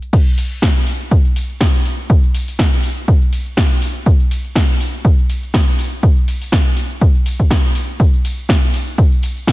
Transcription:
0.02 closed hi-hat soft
0.13 kick loud
0.13 closed hi-hat loud
0.13 crash loud
0.13 ride medium
0.13 shaker soft
0.27 closed hi-hat soft
0.27 shaker soft
0.38 open hi-hat loud
0.38 ride medium
0.38 shaker medium
0.52 closed hi-hat soft
0.52 shaker soft
0.62 kick loud
0.62 snare loud
0.62 closed hi-hat loud
0.62 ride medium
0.62 shaker soft
0.76 closed hi-hat soft
0.76 shaker soft
0.87 open hi-hat loud
0.87 ride medium
0.87 shaker medium
1.01 closed hi-hat soft
1.01 shaker soft
1.11 kick loud
1.11 closed hi-hat medium
1.11 ride medium
1.11 shaker soft
1.25 closed hi-hat soft
1.25 shaker soft
1.36 open hi-hat loud
1.36 ride medium
1.36 shaker medium
1.50 closed hi-hat soft
1.50 shaker soft
1.61 kick loud
1.61 snare loud
1.61 closed hi-hat loud
1.61 ride medium
1.61 shaker soft
1.74 closed hi-hat soft
1.74 shaker soft
1.85 open hi-hat loud
1.85 ride medium
1.85 shaker medium
1.99 shaker soft
2.10 kick loud
2.10 closed hi-hat medium
2.10 ride medium
2.10 shaker soft
2.24 closed hi-hat soft
2.24 shaker soft
2.35 open hi-hat loud
2.35 ride medium
2.35 shaker medium
2.48 open hi-hat medium
2.48 shaker soft
2.59 kick loud
2.59 snare loud
2.59 closed hi-hat medium
2.59 ride medium
2.59 shaker soft
2.73 closed hi-hat soft
2.73 shaker soft
2.84 open hi-hat loud
2.84 ride medium
2.84 shaker medium
2.97 closed hi-hat soft
2.97 shaker soft
3.08 kick loud
3.08 closed hi-hat medium
3.08 ride medium
3.08 shaker soft
3.22 closed hi-hat soft
3.22 shaker soft
3.33 open hi-hat loud
3.33 ride medium
3.33 shaker medium
3.46 closed hi-hat soft
3.46 shaker soft
3.57 kick loud
3.57 snare loud
3.57 closed hi-hat loud
3.57 ride medium
3.57 shaker soft
3.71 closed hi-hat soft
3.71 shaker soft
3.82 open hi-hat loud
3.82 ride medium
3.82 shaker medium
3.96 closed hi-hat soft
3.96 shaker soft
4.06 kick loud
4.06 closed hi-hat medium
4.06 ride medium
4.06 shaker soft
4.20 closed hi-hat soft
4.20 shaker soft
4.31 open hi-hat loud
4.31 ride medium
4.31 shaker medium
4.45 closed hi-hat soft
4.45 shaker soft
4.55 kick loud
4.55 snare loud
4.55 closed hi-hat medium
4.55 ride medium
4.55 shaker soft
4.69 closed hi-hat soft
4.69 shaker soft
4.80 open hi-hat loud
4.80 ride medium
4.80 shaker medium
4.94 closed hi-hat soft
4.94 shaker soft
5.05 kick loud
5.05 closed hi-hat medium
5.05 ride medium
5.05 shaker soft
5.19 closed hi-hat soft
5.19 shaker soft
5.30 open hi-hat loud
5.30 ride medium
5.30 shaker medium
5.43 closed hi-hat soft
5.43 shaker soft
5.54 kick loud
5.54 snare loud
5.54 closed hi-hat medium
5.54 ride medium
5.54 shaker soft
5.68 closed hi-hat soft
5.68 shaker soft
5.79 open hi-hat loud
5.79 ride medium
5.79 shaker medium
5.92 shaker soft
6.03 kick loud
6.03 closed hi-hat medium
6.03 ride medium
6.03 shaker soft
6.17 closed hi-hat soft
6.17 shaker soft
6.28 open hi-hat loud
6.28 ride medium
6.28 shaker medium
6.42 open hi-hat medium
6.42 shaker soft
6.52 kick loud
6.52 snare loud
6.52 ride medium
6.52 shaker soft
6.66 closed hi-hat soft
6.66 shaker soft
6.77 open hi-hat loud
6.77 ride medium
6.77 shaker medium
6.91 closed hi-hat soft
6.91 shaker soft
7.01 kick loud
7.01 closed hi-hat medium
7.01 ride medium
7.01 shaker soft
7.15 closed hi-hat soft
7.15 shaker soft
7.26 open hi-hat loud
7.26 ride medium
7.26 shaker medium
7.40 kick medium
7.40 shaker soft
7.51 kick loud
7.51 snare loud
7.51 closed hi-hat medium
7.51 ride medium
7.51 shaker soft
7.64 closed hi-hat soft
7.64 shaker soft
7.75 open hi-hat loud
7.75 ride medium
7.75 shaker medium
7.89 closed hi-hat soft
7.89 shaker soft
8.00 kick loud
8.00 closed hi-hat medium
8.00 ride medium
8.00 tambourine soft
8.00 shaker soft
8.14 closed hi-hat soft
8.14 tambourine soft
8.14 shaker soft
8.25 open hi-hat loud
8.25 ride medium
8.25 tambourine medium
8.25 shaker medium
8.38 closed hi-hat soft
8.38 tambourine soft
8.38 shaker soft
8.48 kick loud
8.48 snare loud
8.48 closed hi-hat medium
8.48 ride medium
8.48 tambourine medium
8.48 shaker soft
8.62 closed hi-hat soft
8.62 tambourine soft
8.62 shaker soft
8.74 open hi-hat loud
8.74 ride medium
8.74 tambourine medium
8.74 shaker medium
8.88 closed hi-hat soft
8.88 tambourine soft
8.88 shaker soft
8.98 kick loud
8.98 closed hi-hat medium
8.98 ride medium
8.98 tambourine medium
8.98 shaker soft
9.12 closed hi-hat soft
9.12 tambourine soft
9.12 shaker soft
9.22 open hi-hat loud
9.22 ride medium
9.22 tambourine medium
9.22 shaker medium
9.37 closed hi-hat soft
9.37 tambourine soft
9.37 shaker soft
9.47 kick loud
9.47 snare loud
9.47 closed hi-hat medium
9.47 ride medium
9.47 tambourine medium
9.47 shaker soft

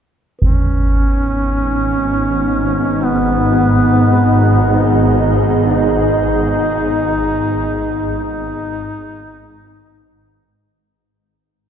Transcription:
0.39 10.96 G#1 medium
0.39 10.96 G#2 medium
0.39 10.83 B3 medium
0.39 3.06 C#4 medium
0.39 10.85 B4 medium
0.39 concert bass drum medium
0.74 10.83 D#4 medium
2.03 10.83 D#5 medium
3.05 5.36 B3 medium
3.32 10.84 G#4 medium
5.65 8.20 D#4 loud
8.24 10.15 D#4 loud

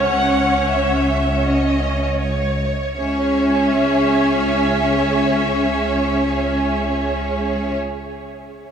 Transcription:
0.00 2.63 C#2 medium
0.00 2.16 C#4 medium
0.00 2.16 C#5 medium
0.00 0.67 F#5 medium
0.70 1.44 E5 soft
1.44 2.20 D#5 soft
2.21 2.95 C#5 soft
2.96 7.76 C#2 medium
2.96 7.75 C#4 medium
2.96 7.76 C#4 medium
2.96 7.77 G#4 soft
2.96 7.77 C#5 soft
2.96 7.75 E5 soft

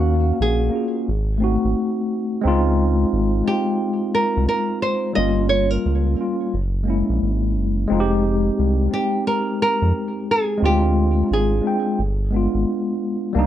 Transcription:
0.00 0.33 D#2 medium
0.00 0.51 A#3 loud
0.00 0.52 C#4 medium
0.00 0.42 F#4 medium
0.00 0.54 F#4 loud
0.00 0.53 F5 medium
0.40 0.70 A#1 medium
0.40 1.39 G#4 medium
0.69 1.05 A#3 medium
0.69 1.06 C#4 medium
0.69 1.07 F4 medium
0.75 1.08 G#4 medium
1.08 1.58 G#1 loud
1.38 2.22 A3 medium
1.38 2.23 C4 medium
1.42 2.24 D#4 medium
1.42 2.25 F#4 loud
1.65 1.75 G#1 medium
2.41 3.06 C#2 loud
2.41 3.25 G#3 loud
2.41 3.26 C4 loud
2.45 3.27 D#4 loud
2.45 3.28 F4 loud
3.13 3.43 G#1 loud
3.44 4.51 G#3 medium
3.44 4.52 C4 medium
3.44 4.53 D#4 medium
3.44 4.14 G4 medium
3.50 4.54 F4 medium
4.15 4.47 A#4 medium
4.37 4.48 C2 loud
4.49 4.80 A#4 medium
4.82 5.15 C5 medium
5.13 5.97 G3 medium
5.13 5.98 A#3 medium
5.13 5.47 D#5 loud
5.17 5.78 G1 loud
5.17 5.99 C#4 medium
5.17 6.00 F4 medium
5.49 5.70 C#5 medium
5.70 7.07 A#4 medium
5.86 6.16 C#2 loud
6.15 6.51 G3 medium
6.15 6.52 A#3 medium
6.19 6.53 C#4 medium
6.19 6.54 F4 medium
6.54 7.03 F#1 loud
6.84 7.67 G#3 medium
6.84 7.68 A#3 medium
6.88 7.69 C#4 medium
6.88 7.70 E4 medium
7.09 7.20 A#1 medium
7.22 7.58 G#1 medium
7.57 7.86 F#1 medium
7.88 8.51 F1 loud
7.88 8.71 G#3 loud
7.88 8.72 C4 loud
7.92 8.73 D#4 loud
7.92 8.00 F4 loud
8.00 8.77 G4 loud
8.59 8.89 C2 loud
8.88 9.96 G#3 medium
8.88 9.98 C4 medium
8.93 9.98 D#4 medium
8.93 9.27 G4 loud
8.93 10.00 G4 medium
9.27 9.61 A#4 loud
9.62 10.31 A#4 loud
9.82 9.93 F2 medium
10.31 10.64 G#4 medium
10.58 11.42 G#3 loud
10.58 11.43 C4 medium
10.62 11.23 D2 loud
10.62 11.44 D4 medium
10.62 11.45 F4 loud
10.62 11.28 G4 medium
11.31 11.61 G#1 loud
11.31 12.30 G#4 medium
11.62 11.97 G#3 medium
11.62 11.98 C4 medium
11.62 11.99 D4 medium
11.67 12.00 G5 medium
11.99 12.49 G1 loud
12.31 13.14 G#3 medium
12.31 13.14 B3 medium
12.31 13.15 D4 medium
12.37 13.16 F4 medium
12.54 12.65 G#1 medium
13.33 13.47 C2 medium
13.33 13.47 G3 loud
13.33 13.47 A#3 loud
13.33 13.47 D4 loud
13.39 13.47 D#4 loud

